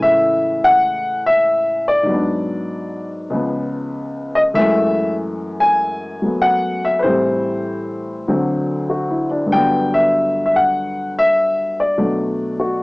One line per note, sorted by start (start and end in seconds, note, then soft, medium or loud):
0.00 2.05 A2 soft
0.00 2.11 C#3 medium
0.00 2.07 E3 soft
0.00 2.08 G#3 soft
0.00 0.66 E5 medium
0.64 1.28 F#5 loud
1.26 1.84 E5 medium
1.88 3.08 D5 medium
2.03 3.29 G#2 soft
2.03 3.31 F#3 soft
2.10 3.33 B3 soft
2.10 3.35 D4 medium
3.30 4.55 C#2 medium
3.30 4.56 C#3 soft
3.30 4.56 F3 soft
3.35 4.57 B3 medium
4.35 4.40 D#5 medium
4.54 7.02 F#2 medium
4.54 7.03 E3 medium
4.54 7.04 G#3 soft
4.54 5.13 E5 loud
4.59 6.22 A3 medium
5.60 6.44 G#5 medium
6.22 7.03 F#3 soft
6.22 7.04 A3 soft
6.22 7.04 B3 soft
6.42 6.85 F#5 medium
6.85 6.98 E5 medium
6.99 7.03 B4 medium
6.99 9.27 C5 medium
7.04 8.27 A2 medium
7.04 8.27 E3 soft
7.04 8.27 G3 soft
7.04 8.27 C4 medium
8.28 9.51 D2 medium
8.28 9.48 D3 soft
8.28 9.51 F#3 soft
8.28 9.51 C4 medium
8.90 9.29 F#4 soft
9.10 9.42 E4 soft
9.31 9.63 D4 soft
9.46 11.95 G2 soft
9.46 11.97 D3 soft
9.52 11.96 F#3 soft
9.52 9.95 G5 medium
9.57 12.01 B3 medium
9.94 10.44 E5 medium
10.46 10.55 E5 medium
10.56 11.13 F#5 medium
11.19 11.81 E5 loud
11.80 12.83 D5 medium
11.97 12.83 B2 soft
11.97 12.83 F#3 soft
11.97 12.83 A3 soft
11.97 12.83 D4 medium
12.60 12.83 F#4 soft